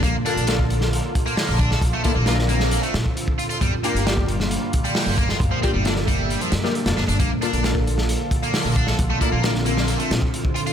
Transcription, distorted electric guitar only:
\new Staff \with { instrumentName = "Distorted electric guitar" } { \time 4/4 \key bes \lydian \tempo 4 = 134 bes16 r16 d'8 d'16 r4. bes8. d'16 a'16 | r16 a16 e'16 bes16 f'16 r16 bes8. a16 r4 f'16 f'16 | g16 r16 bes8 bes16 r4. g8. bes16 f'16 | r16 f16 c'16 g16 d'16 r16 g8. f16 r4 d'16 d'16 |
bes16 r16 d'8 d'16 r4. bes8. d'16 a'16 | r16 a16 e'16 bes16 bes16 r16 bes8. a16 r4 f'16 f'16 | }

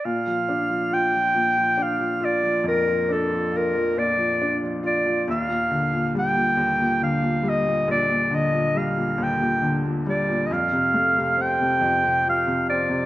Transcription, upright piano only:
\new Staff \with { instrumentName = "Upright piano" } { \clef bass \time 6/8 \key bes \major \tempo 4. = 46 bes,16 f16 d'16 f16 f'16 f16 bes,16 f16 d'16 f16 f'16 f16 | f,16 f16 d'16 f16 f'16 f16 bes,16 f16 d'16 f16 f'16 f16 | ees,16 bes,16 d16 bes,16 g16 bes,16 ees,16 bes,16 d16 bes,16 g16 bes,16 | bes,,16 bes,16 d16 bes,16 g16 bes,16 ees,16 bes,16 d16 bes,16 g16 bes,16 |
f,16 c16 a16 c16 c'16 c16 f,16 c16 f16 c16 c'16 c16 | }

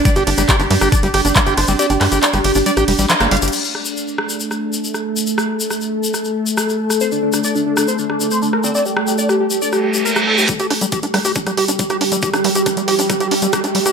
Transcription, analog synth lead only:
\new Staff \with { instrumentName = "Analog synth lead" } { \time 4/4 \key c \dorian \tempo 4 = 138 << { d''8 r8 d''8 r8 d''8 r8 d''8 c''8 | d''8 r8 d''8 r8 d''8 r8 ees''8 f''8 | r1 | r1 |
c''8 r8 d''8 r8 c''8 r8 c''8 bes'8 | d''8 r8 d''8 r8 d''8 r8 bes'8 a'8 | r1 | r1 | } \\ { r16 g'16 g'16 g'16 r16 g'16 g'16 g'16 r16 g'16 g'16 g'16 r16 g'16 r16 g'16 | r16 g'16 g'16 g'16 r16 g'16 g'16 g'16 r16 g'16 g'16 g'16 r16 g'16 r16 g'16 | r1 | r1 |
r16 d'16 d'16 d'16 r16 d'16 d'16 d'16 r16 d'16 d'16 d'16 r16 d'16 r16 d'16 | r16 g'16 g'16 g'16 r16 g'16 g'16 g'16 r16 g'16 g'16 g'16 r16 g'16 r16 g'16 | r1 | r1 | } >> }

